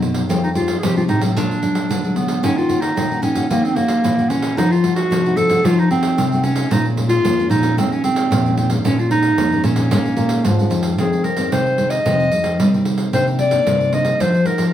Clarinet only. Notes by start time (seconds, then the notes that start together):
0.43 D#4
0.55 F4
0.79 G#4
0.83 G4
0.97 F4
1.09 D#4
1.37 D4
2.16 B3
2.44 C#4
2.57 F4
2.81 D#4
3.22 C#4
3.50 A#3
3.64 C4
3.76 A#3
4.29 C#4
4.57 D#4
4.72 F4
4.95 F#4
5.37 A4
5.65 F4
5.79 D#4
5.91 C4
6.44 C#4
6.72 D#4
7.09 F4
7.50 D#4
7.78 C4
7.92 C#4
8.04 C4
8.57 C4
8.85 C#4
8.99 F4
9.11 D#4
9.64 C#4
10.99 G#4
11.24 A#4
11.52 C5
11.90 D#5
13.14 C5
13.40 D5
13.93 D#5
14.21 C5
14.46 A#4
14.67 A#4